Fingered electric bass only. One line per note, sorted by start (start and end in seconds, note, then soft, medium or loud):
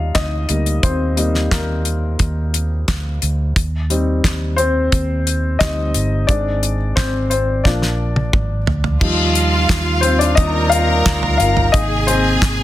0.00 0.11 D#2 medium
0.15 0.47 D2 medium
0.49 0.81 D2 medium
0.83 1.47 D#2 medium
1.52 2.16 D#2 medium
2.20 2.84 D#2 medium
2.88 3.20 D2 medium
3.23 3.54 D2 medium
3.56 4.20 D#2 loud
4.25 4.88 D#2 medium
4.93 5.57 D#2 medium
5.61 5.92 D2 medium
5.95 6.26 G1 medium
6.29 6.93 G#1 medium
6.97 7.61 G#1 medium
7.65 8.29 A#1 medium
8.34 8.65 G#1 medium
8.67 8.99 D2 medium
9.02 9.66 D#2 loud
9.69 10.34 D#2 medium
10.38 11.02 D#2 loud
11.06 11.38 D2 medium
11.40 11.72 G1 medium
12.42 12.63 G#1 medium